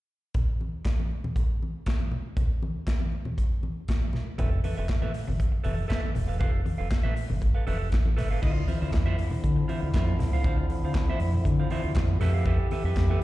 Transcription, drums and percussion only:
0.34 kick, closed hi-hat, muted conga, low conga
0.61 high conga
0.85 kick, snare, clap, closed hi-hat, muted conga
1.00 high conga
1.11 muted conga
1.24 high conga, low conga
1.36 kick, closed hi-hat, muted conga
1.63 high conga
1.86 kick, snare, clap, closed hi-hat
2.00 high conga
2.11 low conga
2.37 kick, closed hi-hat, low conga
2.63 muted conga, high conga
2.87 kick, snare, clap, closed hi-hat
3.00 high conga
3.12 muted conga
3.25 high conga, low conga
3.38 kick, closed hi-hat, muted conga
3.63 muted conga, high conga
3.88 kick, snare, clap, closed hi-hat, muted conga
4.01 high conga
4.13 snare, muted conga, low conga
4.38 kick, closed hi-hat, low conga
4.64 open hi-hat, high conga
4.89 kick, snare, clap, closed hi-hat
5.02 high conga
5.14 open hi-hat, muted conga
5.28 high conga, low conga
5.40 kick, closed hi-hat
5.64 open hi-hat, muted conga, high conga
5.90 kick, snare, clap, closed hi-hat
6.04 high conga
6.15 open hi-hat, low conga
6.41 kick, closed hi-hat, muted conga, low conga
6.66 open hi-hat, muted conga, high conga
6.91 kick, snare, clap, closed hi-hat
7.04 high conga
7.16 open hi-hat, muted conga
7.30 high conga, low conga
7.42 kick, closed hi-hat, muted conga
7.67 open hi-hat, high conga
7.92 kick, snare, clap, closed hi-hat, muted conga
8.06 high conga
8.17 snare, open hi-hat, low conga
8.43 kick, crash
8.68 open hi-hat, muted conga, high conga
8.93 kick, snare, clap, closed hi-hat
9.07 high conga
9.18 open hi-hat, muted conga
9.31 high conga, low conga
9.44 kick, closed hi-hat, muted conga
9.69 open hi-hat, muted conga, high conga
9.94 kick, snare, clap, closed hi-hat, muted conga
10.07 high conga
10.19 snare, open hi-hat, muted conga, low conga
10.44 kick, closed hi-hat
10.70 open hi-hat, high conga
10.94 kick, snare, clap, closed hi-hat, muted conga
11.08 high conga
11.20 open hi-hat, muted conga
11.33 high conga, low conga
11.45 kick, closed hi-hat, muted conga
11.70 open hi-hat, muted conga, high conga
11.95 kick, snare, clap, closed hi-hat
12.09 high conga
12.21 snare, open hi-hat, muted conga, low conga
12.45 kick, closed hi-hat, muted conga
12.71 open hi-hat, high conga
12.96 kick, snare, clap, closed hi-hat
13.10 high conga

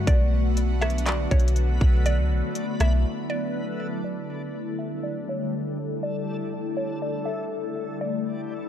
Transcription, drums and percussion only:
0.07 kick, closed hi-hat
0.57 closed hi-hat
0.82 cross-stick, closed hi-hat
0.90 closed hi-hat
0.98 closed hi-hat
1.06 clap, closed hi-hat
1.31 kick, closed hi-hat
1.40 closed hi-hat
1.48 closed hi-hat
1.56 closed hi-hat
1.81 kick
2.06 closed hi-hat
2.55 closed hi-hat
2.80 cross-stick, closed hi-hat

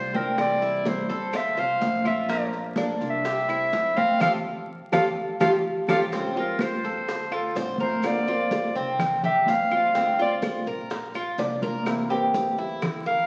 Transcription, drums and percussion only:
0.14 high bongo, high conga, maracas
0.38 high bongo, high conga, claves, maracas
0.62 high bongo, high conga, maracas
0.85 high bongo, high conga, maracas
1.10 high conga, maracas
1.33 high bongo, high conga, claves, maracas
1.57 high bongo, high conga, maracas
1.81 high bongo, low bongo, high conga, maracas
2.05 high bongo, high conga, claves, maracas
2.29 high bongo, high conga, maracas
2.53 high bongo, high conga, maracas
2.76 high bongo, high conga, claves, maracas
3.01 maracas
3.25 high bongo, high conga, maracas
3.49 high bongo, high conga, claves, maracas
3.73 high bongo, low bongo, high conga, maracas
3.97 high bongo, high conga, maracas
4.21 low bongo, low conga, claves, maracas
4.93 low bongo, low conga, claves, maracas
5.41 low bongo, low conga, claves, maracas
5.88 low bongo, low conga, claves, maracas
6.12 high bongo, high conga, maracas
6.36 high bongo, high conga, maracas
6.59 high bongo, high conga, claves, maracas
6.85 maracas
7.07 high bongo, high conga, maracas
7.31 high bongo, high conga, claves, maracas
7.55 high bongo, low bongo, high conga, maracas
7.78 high bongo, high conga, maracas
8.03 high bongo, high conga, claves, maracas
8.27 high bongo, high conga, maracas
8.51 high bongo, high conga, maracas
8.75 high conga, maracas
8.99 high bongo, high conga, low conga, claves, maracas
9.23 high bongo, high conga, low conga, maracas
9.46 high bongo, low bongo, high conga, maracas
9.71 high bongo, claves, maracas
9.95 high bongo, high conga, maracas
10.19 high bongo, high conga, maracas
10.42 high bongo, high conga, claves, maracas
10.66 maracas
10.90 high bongo, high conga, maracas
11.14 high bongo, high conga, claves, maracas
11.38 high bongo, low bongo, high conga, maracas
11.62 high bongo, high conga, maracas
11.86 high bongo, high conga, claves, maracas
12.11 high bongo, high conga, maracas
12.34 high bongo, high conga, maracas
12.58 high conga, maracas
12.82 high bongo, high conga, low conga, claves, maracas
13.06 high bongo, high conga, maracas

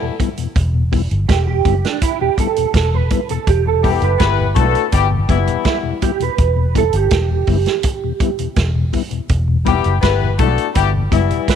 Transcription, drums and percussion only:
0.20 kick, closed hi-hat
0.37 closed hi-hat
0.56 kick, closed hi-hat
0.93 kick, open hi-hat
1.11 closed hi-hat
1.29 kick, snare, closed hi-hat
1.65 kick, closed hi-hat
1.85 snare, closed hi-hat
2.02 kick, closed hi-hat
2.38 kick, closed hi-hat
2.56 closed hi-hat
2.74 kick, snare, closed hi-hat
3.10 kick, closed hi-hat
3.29 closed hi-hat
3.47 kick, closed hi-hat
3.84 kick, open hi-hat
4.02 closed hi-hat
4.20 kick, snare, closed hi-hat
4.56 kick, closed hi-hat
4.75 closed hi-hat
4.92 kick, closed hi-hat
5.29 kick, closed hi-hat
5.47 closed hi-hat
5.65 kick, snare, closed hi-hat
6.02 kick, closed hi-hat
6.20 closed hi-hat
6.38 kick, closed hi-hat
6.75 kick, closed hi-hat
6.93 closed hi-hat
7.11 kick, snare, closed hi-hat
7.47 kick, open hi-hat
7.66 snare, closed hi-hat
7.83 kick, closed hi-hat
8.20 kick, closed hi-hat
8.39 closed hi-hat
8.56 kick, snare, closed hi-hat
8.93 kick, open hi-hat
9.11 closed hi-hat
9.29 kick, closed hi-hat
9.66 kick, closed hi-hat
9.84 closed hi-hat
10.02 kick, snare, closed hi-hat
10.39 kick, closed hi-hat
10.58 closed hi-hat
10.75 kick, closed hi-hat
11.12 kick, closed hi-hat
11.31 closed hi-hat
11.48 kick, snare, closed hi-hat

